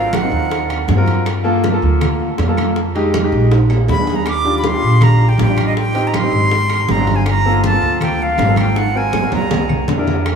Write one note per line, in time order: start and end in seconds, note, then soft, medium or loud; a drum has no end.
0.00 0.26 G#1 medium
0.00 0.14 C4 medium
0.00 0.14 F4 medium
0.00 0.14 F#4 medium
0.00 0.15 A#4 medium
0.00 0.17 F5 loud
0.13 1.08 F#5 medium
0.13 high bongo medium
0.13 high conga medium
0.13 high timbale medium
0.13 low timbale medium
0.13 claves medium
0.23 0.76 C4 medium
0.23 0.76 D#4 medium
0.23 0.76 F#4 medium
0.23 0.76 A#4 medium
0.32 0.84 D#2 loud
0.32 high bongo soft
0.50 high bongo medium
0.50 high conga soft
0.50 high timbale medium
0.69 high bongo soft
0.69 high conga soft
0.69 high timbale medium
0.69 claves medium
0.88 1.76 G2 medium
0.88 high bongo medium
0.88 low bongo medium
0.88 high conga medium
0.88 low timbale medium
0.97 1.25 C4 medium
0.97 1.26 F4 medium
0.97 1.26 F#4 medium
0.97 1.26 A#4 medium
1.06 high bongo soft
1.06 high conga medium
1.06 high timbale medium
1.26 high bongo medium
1.26 high conga soft
1.26 high timbale medium
1.26 claves medium
1.44 1.64 A#3 medium
1.44 1.64 F4 medium
1.44 1.65 A4 loud
1.44 high conga soft
1.64 high bongo medium
1.64 high conga medium
1.64 high timbale medium
1.64 low timbale medium
1.72 2.25 A#3 medium
1.72 2.26 F4 medium
1.72 2.26 A4 medium
1.82 2.35 D2 medium
1.82 high conga soft
2.01 high bongo medium
2.01 high conga soft
2.01 low conga medium
2.01 high timbale medium
2.01 claves medium
2.20 high conga soft
2.38 3.26 F2 medium
2.38 high bongo medium
2.38 low bongo medium
2.38 high conga medium
2.38 high timbale medium
2.38 low timbale medium
2.48 2.76 A#3 medium
2.48 2.76 F4 medium
2.48 2.77 A4 medium
2.57 high conga medium
2.57 high timbale medium
2.57 claves medium
2.76 high bongo medium
2.76 high conga soft
2.95 3.15 G#3 medium
2.95 3.15 D#4 medium
2.95 3.15 G4 loud
2.95 high conga soft
2.95 high timbale medium
3.14 high bongo medium
3.14 high conga loud
3.14 high timbale medium
3.14 low timbale medium
3.14 claves medium
3.23 3.51 G#3 medium
3.23 3.52 D#4 medium
3.23 3.52 G4 medium
3.32 3.85 A#1 loud
3.32 high bongo soft
3.51 high bongo medium
3.51 high conga soft
3.51 high timbale medium
3.70 high bongo soft
3.70 high conga soft
3.70 low timbale loud
3.70 claves medium
3.88 4.76 D#2 medium
3.88 4.17 B5 loud
3.88 high bongo medium
3.88 low bongo medium
3.88 high conga medium
3.88 low timbale medium
3.98 4.26 B3 medium
3.98 4.27 D4 medium
3.98 4.27 G#4 medium
4.07 high bongo soft
4.07 high conga medium
4.07 low timbale medium
4.15 4.27 A#5 medium
4.26 4.55 D6 loud
4.26 high bongo medium
4.26 high conga soft
4.26 high timbale medium
4.26 claves medium
4.44 4.64 D4 medium
4.44 4.65 F4 medium
4.44 4.65 G4 medium
4.44 high conga soft
4.58 4.67 B5 medium
4.64 5.05 C6 loud
4.64 high bongo medium
4.64 high conga medium
4.64 high timbale medium
4.64 low timbale medium
4.73 5.25 D4 medium
4.73 5.26 F4 medium
4.73 5.26 G4 medium
4.82 5.34 A#1 loud
4.82 high conga soft
5.01 5.30 A#5 loud
5.01 high bongo medium
5.01 high conga soft
5.01 low conga medium
5.01 high timbale medium
5.01 claves medium
5.20 high conga soft
5.29 5.40 G5 medium
5.38 6.26 A1 medium
5.38 5.63 G5 medium
5.38 high bongo medium
5.38 low bongo medium
5.38 high conga medium
5.38 high timbale medium
5.38 low timbale medium
5.48 5.76 D4 medium
5.48 5.76 F4 medium
5.48 5.77 G4 medium
5.57 high conga medium
5.57 high timbale loud
5.57 claves medium
5.66 5.77 D#5 medium
5.76 6.09 G5 loud
5.76 high bongo medium
5.76 high conga soft
5.94 6.14 C4 medium
5.94 6.15 D#4 medium
5.94 6.15 G4 medium
5.94 high conga soft
5.94 high timbale medium
6.07 6.17 A#5 medium
6.14 6.93 C6 loud
6.14 high bongo medium
6.14 high conga loud
6.14 high timbale loud
6.14 low timbale medium
6.14 claves medium
6.23 6.51 C4 medium
6.23 6.51 D#4 medium
6.23 6.52 G4 medium
6.32 6.84 G#1 loud
6.32 high bongo soft
6.52 high bongo medium
6.52 high conga soft
6.52 high timbale medium
6.70 high bongo soft
6.70 high conga soft
6.70 high timbale medium
6.70 claves medium
6.88 7.76 G1 loud
6.88 7.17 A#5 medium
6.88 high bongo medium
6.88 low bongo medium
6.88 high conga medium
6.88 low timbale medium
6.98 7.26 C4 medium
6.98 7.26 D4 medium
6.98 7.26 F#4 medium
7.07 high bongo soft
7.07 high conga medium
7.07 high timbale medium
7.16 7.27 G#5 medium
7.26 7.62 A#5 loud
7.26 high bongo medium
7.26 high conga soft
7.26 high timbale medium
7.26 claves medium
7.45 7.64 A#3 medium
7.45 7.64 C4 medium
7.45 7.65 F4 medium
7.45 7.65 A4 medium
7.45 high conga soft
7.64 7.99 A5 loud
7.64 high bongo medium
7.64 high conga loud
7.64 high timbale medium
7.64 low timbale medium
7.72 8.25 A#3 medium
7.72 8.25 C4 medium
7.72 8.25 F4 medium
7.72 8.25 A4 medium
7.82 8.34 D2 loud
8.01 8.24 G5 medium
8.01 high bongo medium
8.01 high conga soft
8.01 low conga medium
8.01 high timbale medium
8.01 claves medium
8.20 8.58 F5 medium
8.20 high conga soft
8.38 9.26 G#1 loud
8.38 high bongo medium
8.38 low bongo medium
8.38 high conga medium
8.38 high timbale medium
8.38 low timbale medium
8.47 8.76 A#3 medium
8.47 8.76 C4 medium
8.47 8.76 F4 medium
8.47 8.76 A4 medium
8.56 8.79 G5 medium
8.56 high conga medium
8.56 high timbale medium
8.56 claves medium
8.76 8.99 F#5 loud
8.76 high bongo medium
8.76 high conga soft
8.76 high timbale medium
8.95 9.14 C4 medium
8.95 9.14 F#4 medium
8.95 9.15 A#4 medium
8.95 9.33 G#5 medium
8.95 high conga soft
9.13 high bongo medium
9.13 high conga loud
9.13 low timbale medium
9.13 claves medium
9.22 9.50 C4 medium
9.22 9.51 F#4 medium
9.22 9.51 A#4 medium
9.32 9.84 C2 loud
9.32 9.86 A#5 medium
9.32 high bongo soft
9.32 high conga loud
9.32 low timbale loud
9.51 high bongo medium
9.51 low conga loud
9.51 low timbale loud
9.69 high bongo soft
9.69 low conga loud
9.69 claves medium
9.88 10.36 F2 medium
9.88 high bongo medium
9.88 low bongo medium
9.88 low conga medium
9.88 low timbale medium
9.98 10.26 D4 medium
9.98 10.26 E4 medium
9.98 10.26 A#4 medium
10.07 high bongo soft
10.07 low conga medium
10.07 low timbale medium
10.26 high bongo medium
10.26 high conga soft
10.26 high timbale medium
10.26 claves medium